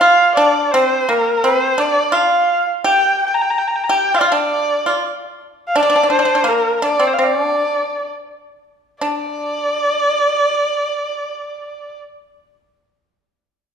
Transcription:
0.00 F4 F5
0.35 D4 D5
0.67 D5
0.72 C4 C5
1.09 A#3 A#4
1.44 C4 C5
1.78 D4 D5
2.12 F4 F5
2.84 G4 G5
3.27 G5
3.34 A#5
3.42 G5
3.50 A#5
3.58 G5
3.68 A#5
3.76 G5
3.84 A#5
3.89 G4 G5
4.14 F4 F5
4.19 F4 D5
4.25 F5
4.32 D4 D5
4.86 F4
5.67 F5
5.76 D4 D5
5.83 D4
5.90 D4
5.96 D4
6.03 D4
6.10 D4 C5
6.19 D4
6.25 D4
6.35 D4
6.44 A#3
6.49 A#4
6.82 D4 D5
7.00 C4
7.07 C5
7.13 F5
7.19 C4
7.24 D5
7.43 D4
9.01 D4 D5

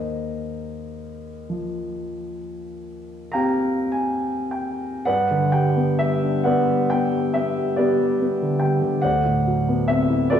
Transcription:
Already playing: D#2 A#4 C5 D#5
1.50 F3
3.32 C4 G4 F5 G5 A#5
3.92 G#5
4.51 G5
5.05 G2 B4 D5 F#5
5.31 D3
5.52 G3 G5
5.76 B3
5.99 G3 E5
6.24 D4
6.44 B3 B4 D5 F#5
6.69 G3
6.90 B3 G5
7.12 G3
7.34 B3 E5
7.58 G3
7.76 B3 G4 B4 D5
8.01 G3
8.21 B3
8.43 D3
8.60 G3 G5
8.82 D3
9.02 D2 C5 D5 F#5
9.25 A2
9.47 F#3
9.68 B3
9.88 C4 E5
10.10 E4
10.30 F#4 A4 B4 D5

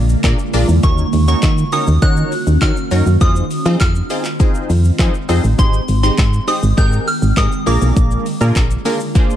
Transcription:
Already playing: A#1 D3 G#3 A#3 F4 D6
0.09 shaker
0.24 A#2 D4 F4 G#4 A#4 D5, kick, snare, clap, closed hi-hat, shaker
0.39 shaker
0.54 A#1 D4 F4 G#4 A#4 D5, open hi-hat, shaker
0.69 E2, shaker
0.83 D#2 D#3 C#4 D#4 F#4 A#4 C#5 C#6, kick, closed hi-hat, shaker
0.98 shaker
1.13 D#2, open hi-hat, shaker
1.28 C#4 D#4 F#4 A#4 C#5 C#6, shaker
1.43 D#3, kick, snare, clap, closed hi-hat, shaker
1.58 shaker
1.72 C#4 D#4 F#4 A#4 C#5 D#6, open hi-hat, shaker
1.87 D#2, shaker
2.02 D#3 C#4 D#4 F#4 A#4 C#5 F#6, kick, closed hi-hat, shaker
2.17 shaker
2.32 open hi-hat, shaker
2.47 D#2, shaker
2.62 D#3 C#4 D#4 F#4 A#4 C#5 F6, kick, snare, clap, closed hi-hat, shaker
2.77 shaker
2.91 F#2 C#4 D#4 F#4 A#4 C#5, open hi-hat, shaker
3.06 F#2, shaker
3.21 F2 G#3 C4 D#4 F4 G#4 C5 D#6, kick, closed hi-hat, shaker
3.36 shaker
3.51 open hi-hat, shaker
3.65 F3 C4 D#4 F4 G#4 C5, shaker
3.80 F2 F6, kick, snare, clap, closed hi-hat, shaker
3.95 shaker
4.10 C4 D#4 F4 G#4 C5, open hi-hat, shaker
4.25 clap, shaker
4.40 C4 D#4 F4 G#4 C5, kick, closed hi-hat, shaker
4.55 shaker
4.70 F2, open hi-hat, shaker
4.84 shaker
4.99 F3 C4 D#4 F4 G#4 C5, kick, snare, clap, closed hi-hat, shaker
5.14 shaker
5.29 F2 C4 D#4 F4 G#4 C5, open hi-hat, shaker
5.44 A1, shaker
5.58 G#1 D#3 C4 D#4 G4 G#4 C5 G5 C6, kick, closed hi-hat, shaker
5.73 shaker
5.88 G#1, open hi-hat, shaker
6.03 C4 D#4 G4 G#4 C5 C6, shaker
6.18 G#2, kick, snare, clap, closed hi-hat, shaker
6.33 shaker
6.47 C4 D#4 G4 G#4 C5 D#6, open hi-hat, shaker
6.63 G#1, shaker
6.77 G#2 C4 D#4 G4 G#4 A#4 G6, kick, closed hi-hat, shaker
6.93 shaker
7.08 F6, open hi-hat, shaker
7.22 G#1, shaker
7.37 G#2 C4 D#4 G4 G#4 A#4 D#6, kick, snare, clap, closed hi-hat, shaker
7.52 shaker
7.66 A#1 D3 A#3 D4 F4 G#4 A#4 D6, open hi-hat, shaker
7.82 B1, shaker
7.96 A#1, kick, closed hi-hat, shaker
8.11 shaker
8.26 open hi-hat, shaker
8.41 A#2 A#3 D4 F4 G#4 A#4, shaker
8.56 A#1, kick, snare, clap, closed hi-hat, shaker
8.71 shaker
8.85 A#3 D4 F4 G#4 A#4, open hi-hat, shaker
9.00 shaker
9.15 A#3 D4 F4 G#4 C5, kick, closed hi-hat, shaker
9.30 shaker

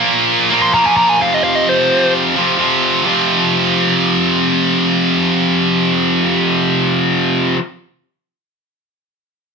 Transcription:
Already playing: A#2 F3 A#3
0.50 A#2 F3 A#3
0.62 C6
0.73 A#2 F3 A#3 A#5
0.86 G#5
0.97 A#5
1.09 G#5
1.19 F2 C3 F3 F5
1.34 D#5
1.44 F5
1.55 D#5
1.69 C5
2.36 F2 C3 F3
2.57 F2 C3 F3
3.03 F2 C3 F3

